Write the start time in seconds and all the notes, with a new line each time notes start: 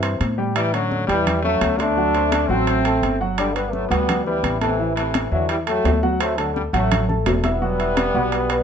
Already playing: G2 C3 E3
0.03 C4 C5 C6, high conga, high timbale
0.20 A2, high conga, high timbale
0.38 G3 G4 G5
0.55 E3 G3 E4 E5 E6, high conga, high timbale
0.73 D3 F#3 C#4 C#5 C#6, high conga, high timbale
0.91 high conga
1.08 E2 E3 G3 G4 G5, high conga, high timbale
1.27 high conga, low conga, high timbale
1.43 F#3 A3 C#4 C#5 C#6, high conga
1.61 D2, high conga, high timbale
1.78 A3 C4 D4 C5 C6, high conga, high timbale
1.97 F#3 F#4 F#5, high conga
2.15 C4 C5 C6, high conga, high timbale
2.32 high conga, high timbale
2.48 A1 F#3 A3 C4 F#4 F#5, high conga
2.67 high conga, high timbale
2.85 A3 A4 A5, high timbale
3.02 G1, high conga, high timbale
3.21 F#3 F#4 F#5
3.37 D3 G3 D4 D5 D6, high conga, high timbale
3.54 G3 B3 B4 B5, high conga, high timbale
3.72 F#3 A3, high conga
3.89 D2 G3 B3 F#4 F#5, high conga, high timbale
4.09 high conga, low conga, high timbale
4.24 E3 G3 B3 B4 B5, high conga
4.43 A1, high conga, high timbale
4.61 C3 E3 A3 A4 A5, high conga, high timbale
4.79 E3 E4 E5, high conga
4.96 C3 E3 A3 A4 A5, high conga, high timbale
5.14 high conga, high timbale
5.32 E2 D3 E3 F#3 E4 E5, high conga
5.49 E3 G3, high conga, high timbale
5.67 F#3 A3 A4 G5, high conga, high timbale
5.85 D2, high conga, high timbale, low timbale
6.03 F#3 F#4 F#5, high conga
6.20 F#3 A3 C4 C5 C6, high timbale
6.37 D3 F#3 A3 A4 A5, high conga, high timbale
6.54 D3 G3, high conga
6.73 A1 F#3 A3 F#4 F#5, high conga, high timbale
6.92 high conga, low conga, high timbale
7.08 A3 A4 A5, high conga, low conga
7.26 E1, high conga, high timbale, low timbale
7.44 G3 B3 E4 E5 E6, high conga, high timbale
7.62 F#3 F#4 F#5, high conga
7.79 E4 E5 E6, high conga, high timbale
7.97 high conga, high timbale
8.14 B1 G3 F#4 F#5, high conga
8.32 high conga, high timbale
8.49 B3 B4 B5, high conga, high timbale